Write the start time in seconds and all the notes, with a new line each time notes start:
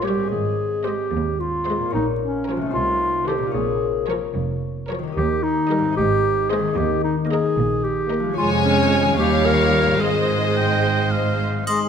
Already playing: A#1 A#2 C#4 G4 C#5
0.04 G3 G4 C#5
0.14 G#2
0.18 C4
0.23 G#4
0.27 G#4 D#5
0.32 G#1 G#2
0.85 G#3 G4 C5 D#5
1.12 D#2
1.40 F4
1.67 G#3 C5 D#5
1.76 A#2
1.81 A#3
1.86 F4
1.90 A#1 D#4 C#5
1.95 A#2
2.20 C#4
2.47 F3 A#4 C#5
2.57 C3
2.62 A3
2.66 D#4
2.70 C2 F4 C5
2.76 C3
3.27 D#3 G4 A4 C5
3.38 A#2
3.42 A#3
3.47 F4
3.51 A#1 G#4 C#5
3.56 A#2
4.09 F3 A#4 C#5
4.36 F1 F2
4.89 F3 A#4 C#5
4.99 D#3
5.03 A#3
5.07 G4
5.12 D#2 D#5
5.16 D#2 G4
5.43 D#4
5.69 G3 A#4 D#5
5.79 G#2
5.83 C4
5.88 D#4
5.92 D#5
5.97 G#1 G#2 G4
6.50 G#3 G#4 C5 D#5
6.59 D#3
6.64 A#3
6.68 D#4
6.73 D#5
6.77 D#2 G4
7.04 D#4
7.30 A#3 G#4 A#4 D#5
7.57 A#1 A#2
7.84 G4
8.11 A#3 A#4 D#5
8.20 F3
8.24 G#3
8.29 G#4
8.33 F4 C#5 G#5
8.37 F1 F2 G#3 C#5
8.64 C#4
9.02 D#3
9.06 G3
9.10 F4
9.15 D#2 G4 C#5 F5
9.19 D#2 G3 C#5
9.46 A#4
9.84 G#2
9.88 G#3
9.93 D#4
9.97 G#2 G#3 G#4 C5
10.02 G#1 D#5
10.57 G5
11.11 F5
11.49 G#2
11.54 G#3
11.58 D#4
11.63 C5 D#5
11.67 G#3 G#4 C6, triangle